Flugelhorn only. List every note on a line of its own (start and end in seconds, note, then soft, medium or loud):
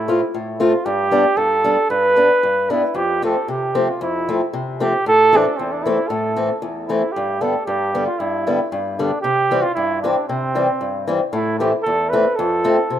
0.00 0.32 E4 medium
0.60 0.87 F4 medium
0.85 1.39 G4 loud
1.37 1.90 A4 loud
1.90 2.73 B4 loud
2.71 2.97 E4 medium
2.95 3.23 G4 medium
3.25 3.48 A4 medium
3.50 3.91 G4 medium
3.90 4.01 F4 medium
4.02 4.51 E4 medium
4.82 5.05 G4 medium
5.08 5.38 A4 loud
5.36 5.58 D4 medium
5.57 5.74 C4 medium
5.72 5.84 D4 medium
5.83 6.10 E4 medium
6.08 6.62 A4 medium
6.86 7.13 E4 medium
7.12 7.43 G4 medium
7.42 7.65 A4 medium
7.66 8.04 G4 medium
8.07 8.21 F4 medium
8.19 8.71 E4 medium
8.99 9.21 D4 medium
9.21 9.63 G4 loud
9.62 9.74 F4 medium
9.75 10.00 E4 medium
10.02 10.26 D4 medium
10.28 11.04 C4 medium
11.32 11.58 E4 medium
11.59 11.71 G4 medium
11.83 12.11 A4 medium
12.10 12.37 B4 medium
12.36 12.99 A4 medium